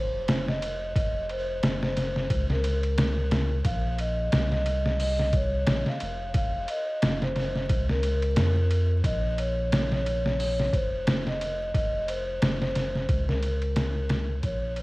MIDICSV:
0, 0, Header, 1, 4, 480
1, 0, Start_track
1, 0, Key_signature, -5, "minor"
1, 0, Tempo, 674157
1, 676, Time_signature, 4, 2, 24, 8
1, 10555, End_track
2, 0, Start_track
2, 0, Title_t, "Vibraphone"
2, 0, Program_c, 0, 11
2, 0, Note_on_c, 0, 72, 90
2, 300, Note_off_c, 0, 72, 0
2, 343, Note_on_c, 0, 75, 87
2, 650, Note_off_c, 0, 75, 0
2, 686, Note_on_c, 0, 75, 86
2, 900, Note_off_c, 0, 75, 0
2, 931, Note_on_c, 0, 72, 91
2, 1259, Note_off_c, 0, 72, 0
2, 1307, Note_on_c, 0, 72, 92
2, 1725, Note_off_c, 0, 72, 0
2, 1790, Note_on_c, 0, 70, 89
2, 2522, Note_off_c, 0, 70, 0
2, 2603, Note_on_c, 0, 77, 97
2, 2819, Note_off_c, 0, 77, 0
2, 2849, Note_on_c, 0, 75, 82
2, 3178, Note_off_c, 0, 75, 0
2, 3225, Note_on_c, 0, 75, 88
2, 3531, Note_off_c, 0, 75, 0
2, 3570, Note_on_c, 0, 75, 94
2, 3782, Note_off_c, 0, 75, 0
2, 3814, Note_on_c, 0, 73, 89
2, 4140, Note_off_c, 0, 73, 0
2, 4191, Note_on_c, 0, 77, 87
2, 4494, Note_off_c, 0, 77, 0
2, 4534, Note_on_c, 0, 77, 92
2, 4744, Note_off_c, 0, 77, 0
2, 4767, Note_on_c, 0, 75, 87
2, 5097, Note_off_c, 0, 75, 0
2, 5145, Note_on_c, 0, 72, 85
2, 5564, Note_off_c, 0, 72, 0
2, 5626, Note_on_c, 0, 70, 91
2, 6360, Note_off_c, 0, 70, 0
2, 6448, Note_on_c, 0, 75, 98
2, 6661, Note_off_c, 0, 75, 0
2, 6685, Note_on_c, 0, 73, 86
2, 7016, Note_off_c, 0, 73, 0
2, 7073, Note_on_c, 0, 73, 87
2, 7375, Note_off_c, 0, 73, 0
2, 7411, Note_on_c, 0, 73, 85
2, 7623, Note_off_c, 0, 73, 0
2, 7651, Note_on_c, 0, 72, 90
2, 7979, Note_off_c, 0, 72, 0
2, 8029, Note_on_c, 0, 75, 88
2, 8333, Note_off_c, 0, 75, 0
2, 8368, Note_on_c, 0, 75, 89
2, 8581, Note_off_c, 0, 75, 0
2, 8604, Note_on_c, 0, 72, 90
2, 8935, Note_off_c, 0, 72, 0
2, 8980, Note_on_c, 0, 72, 92
2, 9402, Note_off_c, 0, 72, 0
2, 9455, Note_on_c, 0, 70, 89
2, 10194, Note_off_c, 0, 70, 0
2, 10284, Note_on_c, 0, 73, 99
2, 10499, Note_off_c, 0, 73, 0
2, 10525, Note_on_c, 0, 72, 82
2, 10555, Note_off_c, 0, 72, 0
2, 10555, End_track
3, 0, Start_track
3, 0, Title_t, "Sub bass"
3, 0, Program_c, 1, 38
3, 0, Note_on_c, 1, 29, 79
3, 659, Note_off_c, 1, 29, 0
3, 686, Note_on_c, 1, 29, 79
3, 1141, Note_off_c, 1, 29, 0
3, 1163, Note_on_c, 1, 30, 104
3, 1619, Note_off_c, 1, 30, 0
3, 1643, Note_on_c, 1, 37, 101
3, 2580, Note_off_c, 1, 37, 0
3, 2600, Note_on_c, 1, 34, 107
3, 3058, Note_off_c, 1, 34, 0
3, 3086, Note_on_c, 1, 36, 102
3, 4021, Note_off_c, 1, 36, 0
3, 4038, Note_on_c, 1, 34, 83
3, 4157, Note_off_c, 1, 34, 0
3, 4283, Note_on_c, 1, 29, 104
3, 4740, Note_off_c, 1, 29, 0
3, 5009, Note_on_c, 1, 30, 100
3, 5479, Note_on_c, 1, 37, 109
3, 5490, Note_off_c, 1, 30, 0
3, 5961, Note_off_c, 1, 37, 0
3, 5965, Note_on_c, 1, 41, 99
3, 6421, Note_off_c, 1, 41, 0
3, 6441, Note_on_c, 1, 34, 96
3, 7618, Note_off_c, 1, 34, 0
3, 7645, Note_on_c, 1, 29, 80
3, 8341, Note_off_c, 1, 29, 0
3, 8364, Note_on_c, 1, 29, 81
3, 8820, Note_off_c, 1, 29, 0
3, 8842, Note_on_c, 1, 30, 107
3, 9299, Note_off_c, 1, 30, 0
3, 9322, Note_on_c, 1, 37, 112
3, 10259, Note_off_c, 1, 37, 0
3, 10277, Note_on_c, 1, 34, 103
3, 10555, Note_off_c, 1, 34, 0
3, 10555, End_track
4, 0, Start_track
4, 0, Title_t, "Drums"
4, 199, Note_on_c, 9, 51, 91
4, 203, Note_on_c, 9, 38, 121
4, 270, Note_off_c, 9, 51, 0
4, 274, Note_off_c, 9, 38, 0
4, 343, Note_on_c, 9, 38, 45
4, 414, Note_off_c, 9, 38, 0
4, 441, Note_on_c, 9, 51, 68
4, 513, Note_off_c, 9, 51, 0
4, 679, Note_on_c, 9, 36, 114
4, 682, Note_on_c, 9, 51, 86
4, 751, Note_off_c, 9, 36, 0
4, 754, Note_off_c, 9, 51, 0
4, 921, Note_on_c, 9, 51, 67
4, 992, Note_off_c, 9, 51, 0
4, 1160, Note_on_c, 9, 51, 85
4, 1164, Note_on_c, 9, 38, 117
4, 1231, Note_off_c, 9, 51, 0
4, 1236, Note_off_c, 9, 38, 0
4, 1301, Note_on_c, 9, 38, 54
4, 1373, Note_off_c, 9, 38, 0
4, 1401, Note_on_c, 9, 51, 65
4, 1405, Note_on_c, 9, 38, 41
4, 1472, Note_off_c, 9, 51, 0
4, 1476, Note_off_c, 9, 38, 0
4, 1538, Note_on_c, 9, 38, 35
4, 1610, Note_off_c, 9, 38, 0
4, 1637, Note_on_c, 9, 36, 107
4, 1638, Note_on_c, 9, 51, 90
4, 1708, Note_off_c, 9, 36, 0
4, 1709, Note_off_c, 9, 51, 0
4, 1778, Note_on_c, 9, 38, 44
4, 1849, Note_off_c, 9, 38, 0
4, 1878, Note_on_c, 9, 51, 68
4, 1949, Note_off_c, 9, 51, 0
4, 2016, Note_on_c, 9, 51, 44
4, 2087, Note_off_c, 9, 51, 0
4, 2119, Note_on_c, 9, 51, 92
4, 2123, Note_on_c, 9, 38, 112
4, 2190, Note_off_c, 9, 51, 0
4, 2195, Note_off_c, 9, 38, 0
4, 2359, Note_on_c, 9, 51, 76
4, 2363, Note_on_c, 9, 38, 103
4, 2430, Note_off_c, 9, 51, 0
4, 2434, Note_off_c, 9, 38, 0
4, 2597, Note_on_c, 9, 36, 114
4, 2597, Note_on_c, 9, 51, 92
4, 2668, Note_off_c, 9, 36, 0
4, 2668, Note_off_c, 9, 51, 0
4, 2838, Note_on_c, 9, 51, 70
4, 2909, Note_off_c, 9, 51, 0
4, 3078, Note_on_c, 9, 51, 89
4, 3082, Note_on_c, 9, 38, 122
4, 3149, Note_off_c, 9, 51, 0
4, 3153, Note_off_c, 9, 38, 0
4, 3218, Note_on_c, 9, 38, 45
4, 3289, Note_off_c, 9, 38, 0
4, 3317, Note_on_c, 9, 51, 71
4, 3388, Note_off_c, 9, 51, 0
4, 3458, Note_on_c, 9, 38, 48
4, 3529, Note_off_c, 9, 38, 0
4, 3558, Note_on_c, 9, 46, 79
4, 3629, Note_off_c, 9, 46, 0
4, 3698, Note_on_c, 9, 38, 47
4, 3769, Note_off_c, 9, 38, 0
4, 3794, Note_on_c, 9, 51, 70
4, 3795, Note_on_c, 9, 36, 94
4, 3865, Note_off_c, 9, 51, 0
4, 3867, Note_off_c, 9, 36, 0
4, 4034, Note_on_c, 9, 51, 96
4, 4038, Note_on_c, 9, 38, 116
4, 4105, Note_off_c, 9, 51, 0
4, 4109, Note_off_c, 9, 38, 0
4, 4173, Note_on_c, 9, 38, 50
4, 4245, Note_off_c, 9, 38, 0
4, 4273, Note_on_c, 9, 51, 65
4, 4344, Note_off_c, 9, 51, 0
4, 4514, Note_on_c, 9, 51, 91
4, 4516, Note_on_c, 9, 36, 115
4, 4585, Note_off_c, 9, 51, 0
4, 4587, Note_off_c, 9, 36, 0
4, 4755, Note_on_c, 9, 51, 65
4, 4826, Note_off_c, 9, 51, 0
4, 4997, Note_on_c, 9, 51, 88
4, 5001, Note_on_c, 9, 38, 121
4, 5068, Note_off_c, 9, 51, 0
4, 5073, Note_off_c, 9, 38, 0
4, 5138, Note_on_c, 9, 38, 56
4, 5210, Note_off_c, 9, 38, 0
4, 5236, Note_on_c, 9, 51, 69
4, 5240, Note_on_c, 9, 38, 39
4, 5307, Note_off_c, 9, 51, 0
4, 5311, Note_off_c, 9, 38, 0
4, 5377, Note_on_c, 9, 38, 36
4, 5449, Note_off_c, 9, 38, 0
4, 5476, Note_on_c, 9, 51, 86
4, 5477, Note_on_c, 9, 36, 104
4, 5548, Note_off_c, 9, 36, 0
4, 5548, Note_off_c, 9, 51, 0
4, 5619, Note_on_c, 9, 38, 45
4, 5690, Note_off_c, 9, 38, 0
4, 5716, Note_on_c, 9, 51, 65
4, 5787, Note_off_c, 9, 51, 0
4, 5855, Note_on_c, 9, 51, 44
4, 5926, Note_off_c, 9, 51, 0
4, 5954, Note_on_c, 9, 51, 94
4, 5959, Note_on_c, 9, 38, 123
4, 6025, Note_off_c, 9, 51, 0
4, 6030, Note_off_c, 9, 38, 0
4, 6200, Note_on_c, 9, 51, 69
4, 6271, Note_off_c, 9, 51, 0
4, 6437, Note_on_c, 9, 36, 109
4, 6439, Note_on_c, 9, 51, 87
4, 6508, Note_off_c, 9, 36, 0
4, 6510, Note_off_c, 9, 51, 0
4, 6679, Note_on_c, 9, 51, 66
4, 6750, Note_off_c, 9, 51, 0
4, 6922, Note_on_c, 9, 51, 93
4, 6926, Note_on_c, 9, 38, 115
4, 6993, Note_off_c, 9, 51, 0
4, 6997, Note_off_c, 9, 38, 0
4, 7062, Note_on_c, 9, 38, 46
4, 7133, Note_off_c, 9, 38, 0
4, 7165, Note_on_c, 9, 51, 69
4, 7236, Note_off_c, 9, 51, 0
4, 7303, Note_on_c, 9, 38, 48
4, 7375, Note_off_c, 9, 38, 0
4, 7404, Note_on_c, 9, 46, 81
4, 7475, Note_off_c, 9, 46, 0
4, 7544, Note_on_c, 9, 38, 47
4, 7616, Note_off_c, 9, 38, 0
4, 7640, Note_on_c, 9, 36, 89
4, 7643, Note_on_c, 9, 51, 64
4, 7712, Note_off_c, 9, 36, 0
4, 7714, Note_off_c, 9, 51, 0
4, 7882, Note_on_c, 9, 51, 92
4, 7886, Note_on_c, 9, 38, 122
4, 7953, Note_off_c, 9, 51, 0
4, 7958, Note_off_c, 9, 38, 0
4, 8023, Note_on_c, 9, 38, 49
4, 8094, Note_off_c, 9, 38, 0
4, 8126, Note_on_c, 9, 51, 67
4, 8197, Note_off_c, 9, 51, 0
4, 8361, Note_on_c, 9, 36, 107
4, 8363, Note_on_c, 9, 51, 86
4, 8433, Note_off_c, 9, 36, 0
4, 8434, Note_off_c, 9, 51, 0
4, 8602, Note_on_c, 9, 51, 68
4, 8673, Note_off_c, 9, 51, 0
4, 8842, Note_on_c, 9, 51, 91
4, 8846, Note_on_c, 9, 38, 118
4, 8913, Note_off_c, 9, 51, 0
4, 8917, Note_off_c, 9, 38, 0
4, 8983, Note_on_c, 9, 38, 53
4, 9054, Note_off_c, 9, 38, 0
4, 9080, Note_on_c, 9, 51, 69
4, 9085, Note_on_c, 9, 38, 41
4, 9152, Note_off_c, 9, 51, 0
4, 9156, Note_off_c, 9, 38, 0
4, 9223, Note_on_c, 9, 38, 34
4, 9294, Note_off_c, 9, 38, 0
4, 9318, Note_on_c, 9, 51, 81
4, 9319, Note_on_c, 9, 36, 111
4, 9390, Note_off_c, 9, 36, 0
4, 9390, Note_off_c, 9, 51, 0
4, 9462, Note_on_c, 9, 38, 41
4, 9533, Note_off_c, 9, 38, 0
4, 9559, Note_on_c, 9, 51, 64
4, 9630, Note_off_c, 9, 51, 0
4, 9696, Note_on_c, 9, 51, 42
4, 9767, Note_off_c, 9, 51, 0
4, 9797, Note_on_c, 9, 51, 97
4, 9801, Note_on_c, 9, 38, 124
4, 9868, Note_off_c, 9, 51, 0
4, 9872, Note_off_c, 9, 38, 0
4, 10035, Note_on_c, 9, 51, 83
4, 10039, Note_on_c, 9, 38, 105
4, 10106, Note_off_c, 9, 51, 0
4, 10110, Note_off_c, 9, 38, 0
4, 10274, Note_on_c, 9, 51, 95
4, 10276, Note_on_c, 9, 36, 112
4, 10346, Note_off_c, 9, 51, 0
4, 10348, Note_off_c, 9, 36, 0
4, 10512, Note_on_c, 9, 51, 74
4, 10555, Note_off_c, 9, 51, 0
4, 10555, End_track
0, 0, End_of_file